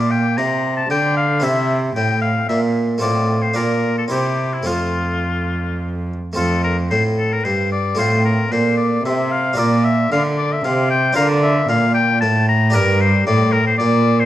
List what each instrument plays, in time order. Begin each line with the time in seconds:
Already playing: harpsichord A#2 D4 F4, cello A#2, oboe D5
0.11 oboe G5
0.37 cello C3, harpsichord C3, oboe A#5
0.77 oboe A5
0.90 cello D3, harpsichord D3, oboe G5
1.17 oboe F5
1.40 harpsichord C3 C4 E4, cello C3, oboe E5
1.96 cello A2, harpsichord A2, oboe G5
2.22 oboe F5
2.49 cello A#2, harpsichord A#2, oboe E5
2.98 harpsichord A3 C4 F4, oboe D5
3.02 cello A2, harpsichord A2
3.42 oboe C5
3.54 cello A#2, harpsichord A#2 D4 F4, oboe A#4
3.98 oboe A4
4.08 cello C3, harpsichord C3 C4 E4, oboe G4
4.54 oboe E4
4.63 harpsichord A3 C4 F4
4.67 cello F2, harpsichord F2, oboe F4
6.33 cello F2, harpsichord A3 C4 F4, oboe A4
6.38 harpsichord F2
6.64 oboe A#4
6.91 harpsichord A2, cello A2, oboe C5
7.18 oboe A4
7.33 oboe A#4
7.44 harpsichord G2, cello G2, oboe C5
7.72 oboe D5
7.95 harpsichord A3 C4 F4
7.99 cello A2, harpsichord A2, oboe C5
8.25 oboe A#4
8.52 cello A#2, harpsichord A#2, oboe C5
8.77 oboe D5
9.04 cello C3, harpsichord C3, oboe E5
9.31 oboe F5
9.53 harpsichord D4 F4 A#4
9.58 cello A#2, harpsichord A#2, oboe D5
9.85 oboe E5
10.12 cello D3, harpsichord D3, oboe F5
10.38 oboe D5
10.53 oboe E5
10.65 harpsichord C3, cello C3, oboe F5
10.90 oboe G5
11.13 cello D3, harpsichord D4 F4 A#4, oboe F5
11.17 harpsichord D3
11.43 oboe E5
11.69 harpsichord A#2, cello A#2, oboe F5
11.94 oboe G5
12.21 cello A2, harpsichord A2, oboe A5
12.48 oboe A#5
12.70 harpsichord D4 G4 A#4
12.75 harpsichord G2, cello G2, oboe A#4
13.01 oboe C5
13.27 harpsichord A2, cello A2, oboe D5
13.52 oboe A#4
13.67 oboe C5
13.78 harpsichord A#2, cello A#2, oboe D5
14.20 oboe C5